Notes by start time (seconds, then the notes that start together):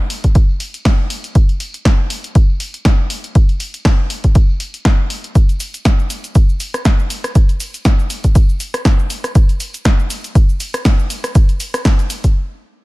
0.10 open hi-hat, tambourine
0.24 kick, closed hi-hat
0.35 kick, closed hi-hat, tambourine
0.49 tambourine
0.60 open hi-hat, tambourine
0.74 closed hi-hat, tambourine
0.85 kick, snare, closed hi-hat
1.10 open hi-hat, tambourine
1.24 closed hi-hat, tambourine
1.35 kick, closed hi-hat
1.49 closed hi-hat, tambourine
1.60 open hi-hat, tambourine
1.74 closed hi-hat, tambourine
1.85 kick, snare, closed hi-hat
2.10 open hi-hat, tambourine
2.24 closed hi-hat, tambourine
2.35 kick, closed hi-hat, tambourine
2.50 tambourine
2.60 open hi-hat, tambourine
2.74 closed hi-hat, tambourine
2.85 kick, snare, closed hi-hat, tambourine
3.10 open hi-hat, tambourine
3.24 closed hi-hat, tambourine
3.35 kick, closed hi-hat, tambourine
3.49 closed hi-hat, tambourine
3.59 open hi-hat, tambourine
3.74 closed hi-hat, tambourine
3.85 kick, snare, closed hi-hat
4.10 open hi-hat, tambourine
4.24 kick, closed hi-hat, tambourine
4.35 kick, closed hi-hat, tambourine
4.49 tambourine
4.60 open hi-hat, tambourine
4.74 closed hi-hat, tambourine
4.85 kick, snare, closed hi-hat
5.10 open hi-hat, tambourine
5.24 closed hi-hat, tambourine
5.35 kick, closed hi-hat, tambourine, shaker
5.49 closed hi-hat, tambourine, shaker
5.60 open hi-hat, tambourine, shaker
5.74 closed hi-hat, tambourine, shaker
5.85 kick, snare, closed hi-hat, shaker
5.99 shaker
6.10 open hi-hat, tambourine, shaker
6.24 closed hi-hat, tambourine, shaker
6.35 kick, closed hi-hat, tambourine, shaker
6.49 tambourine, shaker
6.60 open hi-hat, tambourine, shaker
6.74 cross-stick, closed hi-hat, tambourine, shaker
6.85 kick, snare, closed hi-hat, tambourine, shaker
6.99 shaker
7.10 open hi-hat, tambourine, shaker
7.24 cross-stick, closed hi-hat, tambourine, shaker
7.35 kick, closed hi-hat, tambourine, shaker
7.49 closed hi-hat, tambourine, shaker
7.60 open hi-hat, tambourine, shaker
7.74 closed hi-hat, tambourine, shaker
7.85 kick, snare, closed hi-hat, tambourine, shaker
7.99 shaker
8.10 open hi-hat, tambourine, shaker
8.24 kick, closed hi-hat, tambourine, shaker
8.35 kick, closed hi-hat, tambourine, shaker
8.49 tambourine, shaker
8.60 open hi-hat, tambourine, shaker
8.74 cross-stick, closed hi-hat, tambourine, shaker
8.85 kick, snare, closed hi-hat, shaker
8.99 shaker
9.10 open hi-hat, tambourine, shaker
9.24 cross-stick, closed hi-hat, tambourine, shaker
9.35 kick, closed hi-hat, tambourine, shaker
9.49 closed hi-hat, tambourine, shaker
9.60 open hi-hat, tambourine, shaker
9.73 closed hi-hat, tambourine, shaker
9.85 kick, snare, closed hi-hat, shaker
9.99 shaker
10.10 open hi-hat, tambourine, shaker
10.24 closed hi-hat, tambourine, shaker
10.35 kick, closed hi-hat, shaker
10.48 tambourine, shaker
10.60 open hi-hat, tambourine, shaker
10.74 cross-stick, closed hi-hat, tambourine, shaker
10.85 kick, snare, closed hi-hat, shaker
10.99 shaker
11.10 open hi-hat, tambourine, shaker
11.24 cross-stick, closed hi-hat, tambourine, shaker
11.35 kick, closed hi-hat, tambourine, shaker
11.49 closed hi-hat, tambourine, shaker
11.60 open hi-hat, tambourine, shaker
11.74 cross-stick, closed hi-hat, tambourine, shaker
11.85 kick, snare, closed hi-hat, shaker
11.99 closed hi-hat, shaker
12.10 open hi-hat, tambourine, shaker
12.24 kick, closed hi-hat, shaker